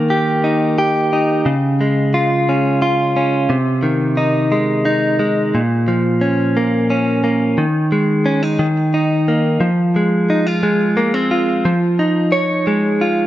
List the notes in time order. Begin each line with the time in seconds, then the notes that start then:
Already playing: D#3 A#3
0.10 G4
0.44 D#4
0.78 G4
1.13 D#4
1.46 C#3
1.81 G#3
2.14 F4
2.49 C#4
2.82 F4
3.16 C#4
3.50 C3
3.83 D#3
4.17 D#4
4.52 G#3
4.85 D#4
5.19 G#3
5.55 A#2
5.88 F3
6.21 C#4
6.57 A#3
6.90 C#4
7.24 A#3
7.58 D#3
7.92 G#3
8.26 C#4
8.43 D#4
8.59 D#3
8.94 D#4
9.28 A#3
9.60 F3
9.96 G#3
10.30 D#4
10.47 F4
10.63 G#3
10.97 A#3
11.14 C4
11.31 F4
11.65 F3
11.99 D#4
12.32 C#5
12.67 G#3
13.01 F4